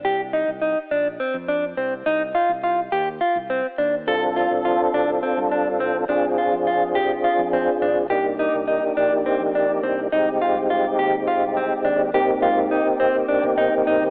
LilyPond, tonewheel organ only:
\new Staff \with { instrumentName = "Tonewheel organ" } { \time 7/8 \key f \dorian \tempo 4 = 104 r2. r8 | r2. r8 | <c' d' f' a'>2.~ <c' d' f' a'>8 | <c' d' f' aes'>2.~ <c' d' f' aes'>8 |
<bes d' ees' g'>2.~ <bes d' ees' g'>8 | <aes c' ees' g'>2.~ <aes c' ees' g'>8 | <bes c' ees' g'>2.~ <bes c' ees' g'>8 | }